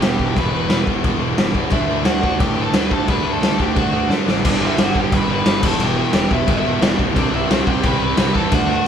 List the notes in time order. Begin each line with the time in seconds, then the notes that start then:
0.02 E1 E2 B2 E3 G4 G5, snare, crash
0.19 E1 E2 B2 E3, kick
0.36 E1 E2 B2 E3 B4 B5, kick, crash
0.53 E1 E2 B2 E3
0.70 E1 E2 B2 E3, snare, crash
0.85 E1 E2 B2 E3, kick
1.04 E1 E2 B2 E3, kick, crash
1.20 E1 E2 B2 E3
1.38 G1 E2 B2 E3, snare, crash
1.55 E2 B2 E3, kick
1.70 D2 D3 A3 D4 E4 E5, kick, crash
1.88 D3 A3 D4
2.04 D2 D3 A3 D4 F#4 F#5, snare, crash
2.22 D2 D3 A3 D4, kick
2.39 A2 D3 A3 D4 G4 G5, kick, crash
2.57 D3 A3 D4
2.62 A4 A5
2.73 D2 D3 A3 D4 B4 B5, snare, crash
2.90 D2 D3 A3 D4 A4 A5, kick
3.06 D2 D3 A3 D4 B4 B5, kick, crash
3.24 D2 D3 A3 D4
3.32 A4 A5
3.41 D2 D3 A3 D4, snare, crash
3.58 D2 D3 A3 D4 G4 G5, kick
3.76 D2 D3 A3 D4 F#4 F#5, kick, crash
3.93 D2 D3 A3 D4
4.10 F#2 D3 A3 D4, snare
4.26 A1 D3 A3 D4, snare
4.44 G1 G2 D3 G3 D4, kick, crash
4.49 D5
4.60 G1 G2 D3 G3 E4
4.67 E5
4.77 G1 G2 D3 G3 F#4, snare, crash
4.83 F#5
4.94 G1 G2 D3 G3, kick
4.98 G4 G5
5.11 G1 G2 D3 G3 B4, kick, crash
5.17 B5
5.28 G1 G2 D3 G3 B4
5.34 B5
5.45 G1 G2 D3 G3, snare, crash
5.63 E1 E2 B2 E3 A4, kick, crash
5.67 A5
5.80 E1 E2 B2 E3 G4, crash
5.85 G5
5.95 E2 B2 E3 G4
6.00 G5
6.13 E1 E2 B2 E3, snare, crash
6.29 E1 E2 B2 E3 E4, kick
6.34 E5
6.46 G1 E2 B2 E3 E4, kick, crash
6.51 E5
6.62 E1 E2 B2 E3
6.81 E1 E2 B2 E3, snare, crash
6.97 D2 E2 B2 E3, kick
7.14 C2 C3 G3 C4 D4, kick, crash
7.18 D5
7.30 C2 C3 G3 C4 E4
7.36 E5
7.48 C2 C3 G3 C4 F#4 F#5, snare, crash
7.66 C2 C3 G3 C4 G4, kick
7.70 G5
7.83 C2 C3 G3 C4 B4, kick, crash
7.87 B5
7.99 C2 C3 G3 C4 B4
8.04 B5
8.16 C2 C3 G3 C4, snare, crash
8.34 E2 C3 G3 C4 A4 A5, kick
8.49 D2 D3 A3 D4, kick, crash
8.54 F#4 F#5
8.68 D3 A3 D4 F#4 F#5